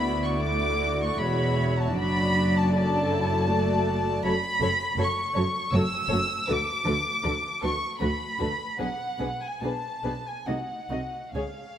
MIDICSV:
0, 0, Header, 1, 6, 480
1, 0, Start_track
1, 0, Tempo, 764331
1, 1225, Time_signature, 3, 2, 24, 8
1, 2193, Tempo, 746269
1, 4113, Tempo, 771208
1, 5553, Tempo, 839161
1, 6513, Tempo, 895522
1, 7216, End_track
2, 0, Start_track
2, 0, Title_t, "Violin section"
2, 0, Program_c, 0, 48
2, 0, Note_on_c, 0, 83, 88
2, 149, Note_on_c, 0, 85, 64
2, 150, Note_off_c, 0, 83, 0
2, 271, Note_on_c, 0, 86, 73
2, 273, Note_off_c, 0, 85, 0
2, 632, Note_off_c, 0, 86, 0
2, 648, Note_on_c, 0, 85, 67
2, 757, Note_on_c, 0, 83, 70
2, 761, Note_off_c, 0, 85, 0
2, 1105, Note_off_c, 0, 83, 0
2, 1120, Note_on_c, 0, 81, 69
2, 1232, Note_off_c, 0, 81, 0
2, 1244, Note_on_c, 0, 83, 92
2, 1592, Note_off_c, 0, 83, 0
2, 1612, Note_on_c, 0, 81, 76
2, 1716, Note_off_c, 0, 81, 0
2, 1723, Note_on_c, 0, 81, 86
2, 2656, Note_off_c, 0, 81, 0
2, 2677, Note_on_c, 0, 83, 102
2, 3145, Note_off_c, 0, 83, 0
2, 3167, Note_on_c, 0, 85, 77
2, 3632, Note_on_c, 0, 88, 89
2, 3636, Note_off_c, 0, 85, 0
2, 4114, Note_off_c, 0, 88, 0
2, 4119, Note_on_c, 0, 86, 81
2, 4830, Note_off_c, 0, 86, 0
2, 4835, Note_on_c, 0, 85, 74
2, 5062, Note_on_c, 0, 83, 72
2, 5065, Note_off_c, 0, 85, 0
2, 5541, Note_off_c, 0, 83, 0
2, 5560, Note_on_c, 0, 78, 70
2, 5903, Note_off_c, 0, 78, 0
2, 5914, Note_on_c, 0, 80, 59
2, 6032, Note_off_c, 0, 80, 0
2, 6034, Note_on_c, 0, 81, 59
2, 6393, Note_on_c, 0, 80, 52
2, 6396, Note_off_c, 0, 81, 0
2, 6511, Note_on_c, 0, 78, 50
2, 6514, Note_off_c, 0, 80, 0
2, 6981, Note_on_c, 0, 77, 48
2, 6982, Note_off_c, 0, 78, 0
2, 7216, Note_off_c, 0, 77, 0
2, 7216, End_track
3, 0, Start_track
3, 0, Title_t, "Violin section"
3, 0, Program_c, 1, 48
3, 0, Note_on_c, 1, 66, 54
3, 0, Note_on_c, 1, 74, 55
3, 746, Note_off_c, 1, 74, 0
3, 766, Note_on_c, 1, 73, 53
3, 1228, Note_off_c, 1, 73, 0
3, 1231, Note_on_c, 1, 74, 59
3, 1690, Note_off_c, 1, 66, 0
3, 1709, Note_on_c, 1, 69, 58
3, 2176, Note_off_c, 1, 74, 0
3, 2191, Note_off_c, 1, 69, 0
3, 2197, Note_on_c, 1, 74, 54
3, 2199, Note_on_c, 1, 69, 54
3, 2661, Note_off_c, 1, 74, 0
3, 2662, Note_off_c, 1, 69, 0
3, 2676, Note_on_c, 1, 69, 50
3, 2676, Note_on_c, 1, 73, 54
3, 2727, Note_off_c, 1, 69, 0
3, 2728, Note_off_c, 1, 73, 0
3, 2910, Note_on_c, 1, 69, 52
3, 2916, Note_on_c, 1, 73, 52
3, 2962, Note_off_c, 1, 69, 0
3, 2967, Note_off_c, 1, 73, 0
3, 3154, Note_on_c, 1, 69, 57
3, 3155, Note_on_c, 1, 73, 54
3, 3205, Note_off_c, 1, 69, 0
3, 3207, Note_off_c, 1, 73, 0
3, 3384, Note_on_c, 1, 73, 54
3, 3385, Note_on_c, 1, 69, 49
3, 3436, Note_off_c, 1, 73, 0
3, 3437, Note_off_c, 1, 69, 0
3, 3629, Note_on_c, 1, 73, 47
3, 3631, Note_on_c, 1, 69, 49
3, 3680, Note_off_c, 1, 73, 0
3, 3683, Note_off_c, 1, 69, 0
3, 3859, Note_on_c, 1, 73, 50
3, 3860, Note_on_c, 1, 69, 53
3, 3910, Note_off_c, 1, 73, 0
3, 3911, Note_off_c, 1, 69, 0
3, 4105, Note_on_c, 1, 71, 52
3, 4108, Note_on_c, 1, 69, 51
3, 4156, Note_off_c, 1, 71, 0
3, 4158, Note_off_c, 1, 69, 0
3, 4342, Note_on_c, 1, 71, 42
3, 4343, Note_on_c, 1, 69, 52
3, 4392, Note_off_c, 1, 71, 0
3, 4393, Note_off_c, 1, 69, 0
3, 4582, Note_on_c, 1, 71, 46
3, 4587, Note_on_c, 1, 69, 47
3, 4631, Note_off_c, 1, 71, 0
3, 4637, Note_off_c, 1, 69, 0
3, 4818, Note_on_c, 1, 69, 50
3, 4821, Note_on_c, 1, 71, 42
3, 4868, Note_off_c, 1, 69, 0
3, 4871, Note_off_c, 1, 71, 0
3, 5063, Note_on_c, 1, 71, 45
3, 5067, Note_on_c, 1, 69, 48
3, 5113, Note_off_c, 1, 71, 0
3, 5117, Note_off_c, 1, 69, 0
3, 5309, Note_on_c, 1, 69, 46
3, 5309, Note_on_c, 1, 71, 43
3, 5359, Note_off_c, 1, 69, 0
3, 5359, Note_off_c, 1, 71, 0
3, 5547, Note_on_c, 1, 71, 48
3, 5550, Note_on_c, 1, 68, 44
3, 5594, Note_off_c, 1, 71, 0
3, 5596, Note_off_c, 1, 68, 0
3, 5786, Note_on_c, 1, 68, 37
3, 5786, Note_on_c, 1, 71, 38
3, 5832, Note_off_c, 1, 68, 0
3, 5832, Note_off_c, 1, 71, 0
3, 6035, Note_on_c, 1, 68, 44
3, 6039, Note_on_c, 1, 71, 41
3, 6080, Note_off_c, 1, 68, 0
3, 6085, Note_off_c, 1, 71, 0
3, 6265, Note_on_c, 1, 68, 37
3, 6266, Note_on_c, 1, 71, 34
3, 6311, Note_off_c, 1, 68, 0
3, 6311, Note_off_c, 1, 71, 0
3, 6510, Note_on_c, 1, 66, 36
3, 6514, Note_on_c, 1, 75, 34
3, 6553, Note_off_c, 1, 66, 0
3, 6557, Note_off_c, 1, 75, 0
3, 6745, Note_on_c, 1, 66, 35
3, 6749, Note_on_c, 1, 75, 34
3, 6788, Note_off_c, 1, 66, 0
3, 6792, Note_off_c, 1, 75, 0
3, 6984, Note_on_c, 1, 68, 37
3, 6986, Note_on_c, 1, 73, 33
3, 7027, Note_off_c, 1, 68, 0
3, 7029, Note_off_c, 1, 73, 0
3, 7216, End_track
4, 0, Start_track
4, 0, Title_t, "Viola section"
4, 0, Program_c, 2, 48
4, 0, Note_on_c, 2, 59, 52
4, 0, Note_on_c, 2, 64, 53
4, 267, Note_on_c, 2, 57, 58
4, 272, Note_off_c, 2, 59, 0
4, 739, Note_off_c, 2, 64, 0
4, 746, Note_off_c, 2, 57, 0
4, 747, Note_on_c, 2, 64, 55
4, 752, Note_on_c, 2, 56, 59
4, 1209, Note_off_c, 2, 64, 0
4, 1218, Note_on_c, 2, 62, 52
4, 1221, Note_off_c, 2, 56, 0
4, 1221, Note_on_c, 2, 54, 58
4, 1700, Note_off_c, 2, 62, 0
4, 1708, Note_on_c, 2, 62, 65
4, 1947, Note_off_c, 2, 62, 0
4, 1958, Note_on_c, 2, 64, 65
4, 2171, Note_off_c, 2, 54, 0
4, 2189, Note_on_c, 2, 66, 59
4, 2191, Note_on_c, 2, 57, 62
4, 2194, Note_off_c, 2, 64, 0
4, 2661, Note_off_c, 2, 57, 0
4, 2662, Note_off_c, 2, 66, 0
4, 2669, Note_on_c, 2, 57, 55
4, 2670, Note_on_c, 2, 66, 59
4, 2720, Note_off_c, 2, 57, 0
4, 2721, Note_off_c, 2, 66, 0
4, 2907, Note_on_c, 2, 57, 53
4, 2907, Note_on_c, 2, 66, 48
4, 2959, Note_off_c, 2, 57, 0
4, 2959, Note_off_c, 2, 66, 0
4, 3146, Note_on_c, 2, 66, 53
4, 3148, Note_on_c, 2, 57, 52
4, 3197, Note_off_c, 2, 66, 0
4, 3200, Note_off_c, 2, 57, 0
4, 3394, Note_on_c, 2, 66, 50
4, 3396, Note_on_c, 2, 57, 53
4, 3446, Note_off_c, 2, 66, 0
4, 3447, Note_off_c, 2, 57, 0
4, 3636, Note_on_c, 2, 57, 55
4, 3636, Note_on_c, 2, 66, 51
4, 3687, Note_off_c, 2, 57, 0
4, 3687, Note_off_c, 2, 66, 0
4, 3874, Note_on_c, 2, 57, 53
4, 3875, Note_on_c, 2, 66, 58
4, 3926, Note_off_c, 2, 57, 0
4, 3926, Note_off_c, 2, 66, 0
4, 4116, Note_on_c, 2, 57, 54
4, 4118, Note_on_c, 2, 66, 57
4, 4166, Note_off_c, 2, 57, 0
4, 4168, Note_off_c, 2, 66, 0
4, 4357, Note_on_c, 2, 57, 48
4, 4358, Note_on_c, 2, 66, 47
4, 4407, Note_off_c, 2, 57, 0
4, 4408, Note_off_c, 2, 66, 0
4, 4581, Note_on_c, 2, 57, 46
4, 4583, Note_on_c, 2, 66, 48
4, 4630, Note_off_c, 2, 57, 0
4, 4633, Note_off_c, 2, 66, 0
4, 4828, Note_on_c, 2, 57, 46
4, 4832, Note_on_c, 2, 66, 50
4, 4878, Note_off_c, 2, 57, 0
4, 4882, Note_off_c, 2, 66, 0
4, 5069, Note_on_c, 2, 57, 46
4, 5070, Note_on_c, 2, 66, 46
4, 5119, Note_off_c, 2, 57, 0
4, 5120, Note_off_c, 2, 66, 0
4, 5309, Note_on_c, 2, 66, 44
4, 5310, Note_on_c, 2, 57, 45
4, 5359, Note_off_c, 2, 66, 0
4, 5360, Note_off_c, 2, 57, 0
4, 5558, Note_on_c, 2, 59, 43
4, 5559, Note_on_c, 2, 62, 51
4, 5604, Note_off_c, 2, 59, 0
4, 5605, Note_off_c, 2, 62, 0
4, 5784, Note_on_c, 2, 62, 39
4, 5785, Note_on_c, 2, 59, 41
4, 5830, Note_off_c, 2, 62, 0
4, 5831, Note_off_c, 2, 59, 0
4, 6034, Note_on_c, 2, 59, 44
4, 6035, Note_on_c, 2, 62, 41
4, 6080, Note_off_c, 2, 59, 0
4, 6081, Note_off_c, 2, 62, 0
4, 6270, Note_on_c, 2, 62, 36
4, 6274, Note_on_c, 2, 59, 39
4, 6316, Note_off_c, 2, 62, 0
4, 6320, Note_off_c, 2, 59, 0
4, 6512, Note_on_c, 2, 63, 40
4, 6514, Note_on_c, 2, 57, 34
4, 6555, Note_off_c, 2, 63, 0
4, 6557, Note_off_c, 2, 57, 0
4, 6741, Note_on_c, 2, 63, 34
4, 6743, Note_on_c, 2, 57, 35
4, 6784, Note_off_c, 2, 63, 0
4, 6786, Note_off_c, 2, 57, 0
4, 6984, Note_on_c, 2, 56, 34
4, 6985, Note_on_c, 2, 68, 33
4, 7027, Note_off_c, 2, 56, 0
4, 7028, Note_off_c, 2, 68, 0
4, 7216, End_track
5, 0, Start_track
5, 0, Title_t, "Cello section"
5, 0, Program_c, 3, 48
5, 0, Note_on_c, 3, 38, 55
5, 739, Note_off_c, 3, 38, 0
5, 758, Note_on_c, 3, 40, 62
5, 1214, Note_off_c, 3, 40, 0
5, 1216, Note_on_c, 3, 42, 58
5, 2664, Note_off_c, 3, 42, 0
5, 2673, Note_on_c, 3, 42, 68
5, 2725, Note_off_c, 3, 42, 0
5, 2907, Note_on_c, 3, 42, 63
5, 2959, Note_off_c, 3, 42, 0
5, 3145, Note_on_c, 3, 42, 55
5, 3197, Note_off_c, 3, 42, 0
5, 3393, Note_on_c, 3, 42, 68
5, 3445, Note_off_c, 3, 42, 0
5, 3631, Note_on_c, 3, 42, 70
5, 3683, Note_off_c, 3, 42, 0
5, 3880, Note_on_c, 3, 42, 66
5, 3932, Note_off_c, 3, 42, 0
5, 4118, Note_on_c, 3, 50, 55
5, 4168, Note_off_c, 3, 50, 0
5, 4344, Note_on_c, 3, 50, 62
5, 4394, Note_off_c, 3, 50, 0
5, 4586, Note_on_c, 3, 50, 57
5, 4636, Note_off_c, 3, 50, 0
5, 4829, Note_on_c, 3, 50, 55
5, 4879, Note_off_c, 3, 50, 0
5, 5061, Note_on_c, 3, 50, 55
5, 5111, Note_off_c, 3, 50, 0
5, 5301, Note_on_c, 3, 50, 55
5, 5351, Note_off_c, 3, 50, 0
5, 5551, Note_on_c, 3, 47, 47
5, 5597, Note_off_c, 3, 47, 0
5, 5782, Note_on_c, 3, 47, 55
5, 5828, Note_off_c, 3, 47, 0
5, 6028, Note_on_c, 3, 47, 46
5, 6074, Note_off_c, 3, 47, 0
5, 6268, Note_on_c, 3, 47, 42
5, 6314, Note_off_c, 3, 47, 0
5, 6510, Note_on_c, 3, 48, 41
5, 6553, Note_off_c, 3, 48, 0
5, 6747, Note_on_c, 3, 48, 39
5, 6789, Note_off_c, 3, 48, 0
5, 6989, Note_on_c, 3, 49, 40
5, 7032, Note_off_c, 3, 49, 0
5, 7216, End_track
6, 0, Start_track
6, 0, Title_t, "Double bass section"
6, 0, Program_c, 4, 48
6, 0, Note_on_c, 4, 38, 59
6, 738, Note_off_c, 4, 38, 0
6, 759, Note_on_c, 4, 28, 60
6, 1215, Note_off_c, 4, 28, 0
6, 1223, Note_on_c, 4, 30, 69
6, 2658, Note_off_c, 4, 30, 0
6, 2666, Note_on_c, 4, 30, 68
6, 2718, Note_off_c, 4, 30, 0
6, 2914, Note_on_c, 4, 30, 62
6, 2966, Note_off_c, 4, 30, 0
6, 3151, Note_on_c, 4, 30, 59
6, 3203, Note_off_c, 4, 30, 0
6, 3393, Note_on_c, 4, 30, 54
6, 3445, Note_off_c, 4, 30, 0
6, 3634, Note_on_c, 4, 30, 67
6, 3686, Note_off_c, 4, 30, 0
6, 3873, Note_on_c, 4, 30, 61
6, 3924, Note_off_c, 4, 30, 0
6, 4122, Note_on_c, 4, 38, 61
6, 4171, Note_off_c, 4, 38, 0
6, 4359, Note_on_c, 4, 38, 57
6, 4409, Note_off_c, 4, 38, 0
6, 4592, Note_on_c, 4, 38, 51
6, 4641, Note_off_c, 4, 38, 0
6, 4834, Note_on_c, 4, 38, 48
6, 4884, Note_off_c, 4, 38, 0
6, 5074, Note_on_c, 4, 38, 54
6, 5123, Note_off_c, 4, 38, 0
6, 5313, Note_on_c, 4, 38, 54
6, 5363, Note_off_c, 4, 38, 0
6, 5560, Note_on_c, 4, 35, 61
6, 5606, Note_off_c, 4, 35, 0
6, 5786, Note_on_c, 4, 35, 46
6, 5832, Note_off_c, 4, 35, 0
6, 6029, Note_on_c, 4, 35, 43
6, 6075, Note_off_c, 4, 35, 0
6, 6269, Note_on_c, 4, 35, 42
6, 6314, Note_off_c, 4, 35, 0
6, 6517, Note_on_c, 4, 36, 41
6, 6560, Note_off_c, 4, 36, 0
6, 6742, Note_on_c, 4, 36, 39
6, 6785, Note_off_c, 4, 36, 0
6, 6978, Note_on_c, 4, 37, 41
6, 7021, Note_off_c, 4, 37, 0
6, 7216, End_track
0, 0, End_of_file